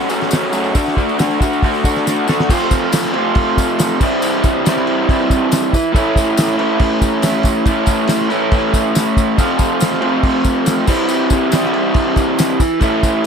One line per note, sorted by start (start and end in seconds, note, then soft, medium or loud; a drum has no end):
0.00 tambourine soft
0.08 0.29 F#2 loud
0.08 0.29 C#3 medium
0.08 0.30 F#3 medium
0.08 0.31 A3 loud
0.08 0.31 C#4 loud
0.08 0.31 F#4 loud
0.08 tambourine medium
0.21 snare soft
0.21 tambourine soft
0.30 0.51 F#2 medium
0.30 0.51 C#3 medium
0.30 0.52 F#3 medium
0.30 0.53 A3 loud
0.30 0.53 C#4 loud
0.30 0.54 F#4 loud
0.30 snare loud
0.30 open hi-hat medium
0.30 tambourine loud
0.52 0.73 F#2 medium
0.52 0.73 C#3 medium
0.52 0.74 F#3 medium
0.52 0.74 A3 medium
0.52 0.74 C#4 loud
0.52 0.75 F#4 medium
0.52 tambourine medium
0.64 tambourine soft
0.74 0.94 D3 medium
0.74 0.95 A3 medium
0.74 0.96 D4 loud
0.74 0.96 F#4 loud
0.74 kick loud
0.74 open hi-hat medium
0.74 tambourine medium
0.86 snare soft
0.86 tambourine soft
0.96 1.17 D3 medium
0.96 1.18 A3 medium
0.96 1.18 D4 medium
0.96 1.19 F#4 medium
0.96 kick medium
0.96 tambourine soft
1.09 tambourine soft
1.18 1.38 D3 medium
1.18 1.39 A3 medium
1.18 1.40 D4 loud
1.18 1.41 F#4 medium
1.18 snare loud
1.18 open hi-hat medium
1.18 tambourine medium
1.31 tambourine soft
1.40 1.62 D3 medium
1.40 1.63 A3 medium
1.40 1.63 D4 medium
1.40 1.63 F#4 loud
1.40 kick medium
1.40 tambourine medium
1.53 tambourine soft
1.63 1.83 D3 loud
1.63 1.83 A3 loud
1.63 1.84 D4 medium
1.63 1.85 F#4 loud
1.63 kick loud
1.63 open hi-hat medium
1.63 tambourine soft
1.74 tambourine soft
1.84 2.04 D3 medium
1.84 2.05 A3 medium
1.84 2.06 D4 loud
1.84 2.06 F#4 loud
1.84 kick medium
1.84 tambourine medium
1.96 snare soft
1.96 tambourine soft
2.05 2.26 D3 medium
2.05 2.26 A3 medium
2.05 2.27 D4 medium
2.05 2.28 F#4 loud
2.05 snare medium
2.05 tambourine loud
2.16 tambourine soft
2.27 2.48 D3 medium
2.27 2.48 A3 loud
2.27 2.48 D4 medium
2.27 2.49 F#4 loud
2.27 snare loud
2.27 tambourine medium
2.40 snare loud
2.40 tambourine soft
2.49 3.13 F2 medium
2.49 3.13 C3 medium
2.49 3.14 F3 medium
2.49 3.14 A3 medium
2.49 3.14 C4 loud
2.49 3.12 F4 loud
2.49 kick loud
2.49 crash loud
2.49 tambourine medium
2.49 crash medium
2.71 kick medium
2.71 tambourine medium
2.71 crash medium
2.92 snare loud
2.92 tambourine medium
2.92 crash loud
3.05 snare soft
3.13 3.99 C3 medium
3.13 4.00 F3 medium
3.13 4.00 A3 medium
3.13 3.99 C4 medium
3.13 3.99 F4 loud
3.13 crash medium
3.17 4.01 F2 medium
3.35 kick loud
3.35 tambourine soft
3.35 crash loud
3.58 kick medium
3.58 tambourine medium
3.58 crash medium
3.79 snare loud
3.79 tambourine loud
3.79 crash medium
4.00 4.64 C3 medium
4.00 4.65 E3 medium
4.00 4.65 G3 loud
4.00 4.65 C4 loud
4.00 4.68 E4 medium
4.00 kick loud
4.00 tambourine medium
4.00 crash loud
4.22 tambourine medium
4.22 crash medium
4.44 kick loud
4.44 tambourine medium
4.44 crash medium
4.65 5.71 C3 medium
4.65 5.94 E3 medium
4.65 5.72 G3 medium
4.65 5.73 C4 medium
4.65 5.96 E4 medium
4.65 snare loud
4.65 tambourine loud
4.65 crash medium
4.77 snare soft
4.87 crash medium
5.09 kick loud
5.09 tambourine soft
5.09 crash medium
5.30 kick medium
5.30 tambourine medium
5.30 crash medium
5.51 snare loud
5.51 tambourine loud
5.51 crash medium
5.73 kick medium
5.73 tambourine medium
5.73 crash medium
5.93 6.61 A2 medium
5.93 6.60 E3 loud
5.93 6.59 A3 loud
5.93 6.58 C#4 loud
5.93 kick loud
5.93 tambourine medium
5.93 crash medium
5.97 6.57 E4 loud
6.16 kick loud
6.16 tambourine medium
6.16 crash medium
6.37 snare loud
6.37 tambourine medium
6.37 crash medium
6.57 7.64 A2 medium
6.57 7.65 E3 medium
6.57 7.67 A3 medium
6.57 7.65 C#4 loud
6.57 7.64 E4 medium
6.57 crash medium
6.79 kick loud
6.79 tambourine soft
6.79 crash loud
7.02 kick medium
7.02 tambourine medium
7.02 crash medium
7.22 snare loud
7.22 tambourine loud
7.22 crash loud
7.43 kick loud
7.43 tambourine medium
7.43 crash medium
7.65 8.29 A2 loud
7.65 8.29 E3 loud
7.65 8.31 A3 loud
7.65 8.30 C#4 loud
7.65 8.29 E4 medium
7.65 kick loud
7.65 tambourine medium
7.65 crash medium
7.86 kick medium
7.86 tambourine medium
7.86 crash medium
8.07 snare loud
8.07 tambourine medium
8.07 crash loud
8.21 snare soft
8.30 9.37 A2 medium
8.30 9.37 E3 medium
8.30 9.37 A3 medium
8.30 9.36 C#4 medium
8.30 9.36 E4 medium
8.30 tambourine soft
8.30 crash medium
8.52 kick loud
8.52 tambourine soft
8.52 crash medium
8.73 kick medium
8.73 tambourine medium
8.73 crash medium
8.95 snare loud
8.95 tambourine loud
8.95 crash medium
9.17 kick loud
9.17 tambourine medium
9.17 crash medium
9.37 10.00 F2 medium
9.37 10.00 C3 medium
9.37 10.00 F3 loud
9.37 10.01 A3 medium
9.37 10.01 C4 medium
9.37 10.00 F4 loud
9.37 kick loud
9.37 tambourine medium
9.37 crash medium
9.59 kick medium
9.59 tambourine medium
9.59 crash medium
9.80 snare loud
9.80 tambourine loud
9.80 crash medium
9.93 snare soft
10.01 10.88 F2 medium
10.01 10.85 C3 medium
10.01 10.87 F3 medium
10.01 10.87 A3 medium
10.01 10.86 C4 medium
10.01 10.86 F4 medium
10.01 crash medium
10.23 kick loud
10.23 tambourine soft
10.23 crash loud
10.44 kick medium
10.44 tambourine medium
10.44 crash medium
10.66 snare loud
10.66 tambourine loud
10.66 crash medium
10.86 11.49 C3 medium
10.86 11.52 E3 loud
10.86 11.51 G3 loud
10.86 11.51 C4 loud
10.86 11.54 E4 loud
10.86 kick loud
10.86 tambourine medium
10.86 crash loud
11.09 tambourine medium
11.09 crash medium
11.30 kick medium
11.30 tambourine medium
11.30 crash medium
11.50 12.58 C3 medium
11.50 12.81 E3 medium
11.50 12.59 G3 medium
11.50 12.59 C4 medium
11.50 snare loud
11.50 tambourine medium
11.50 crash medium
11.54 12.83 E4 loud
11.65 snare soft
11.74 crash medium
11.94 kick loud
11.94 tambourine soft
11.94 crash loud
12.16 kick medium
12.16 tambourine medium
12.16 crash medium
12.39 snare loud
12.39 tambourine loud
12.39 crash medium
12.60 kick loud
12.60 tambourine medium
12.60 crash medium
12.80 13.26 A2 medium
12.80 13.26 E3 medium
12.80 13.26 A3 loud
12.80 13.26 C#4 loud
12.80 13.26 E4 loud
12.80 kick loud
12.80 tambourine medium
12.80 crash medium
13.03 kick medium
13.03 tambourine medium
13.03 crash medium